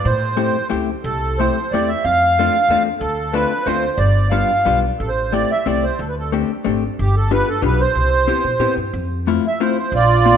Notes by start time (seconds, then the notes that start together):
0.05 A2 C5
0.37 A3 C4 E4 G4
0.70 C#2 A3 C4 E4 G4
1.04 C2 A4
1.38 A3 C4 E4 G4 C5
1.71 E2 A3 C4 E4 G4 D5
1.88 E5
2.04 F2 F5
2.39 A3 C4 D4 F4
2.68 E2 A3 C4 D4 F4
3.00 D2 A4
3.33 A3 C4 D4 F4 B4
3.65 D2 A3 C4 D4 F4 C5
3.97 G1 D5
4.31 G3 B3 D4 F4 F5
4.65 B1 G3 B3 D4 F4
5.00 A1 A4
5.08 C5
5.32 A3 C4 E4 G4 D5
5.51 E5
5.66 C2 A3 C4 E4 G4 D5
5.83 C5
5.99 D2 A4
6.09 B4
6.18 A4
6.32 A3 C4 D4 G4
6.64 G#1 A3 C4 D4 G4
6.99 G1 G4
7.16 A4
7.31 B3 D4 F4 G4 B4
7.48 A4
7.62 B1 B3 D4 F4 G4 B4
7.81 C5
7.95 C2
8.27 B3 C4 E4 G4
8.44 B2
8.59 A2 B3 C4 E4 G4
8.77 G2
8.93 F2
9.27 A3 C4 E4 F4
9.47 E5
9.60 A3 C4 E4 F4 C5
9.79 C5
9.92 A#1 F4 D5
10.25 A#3 C4 D4 F4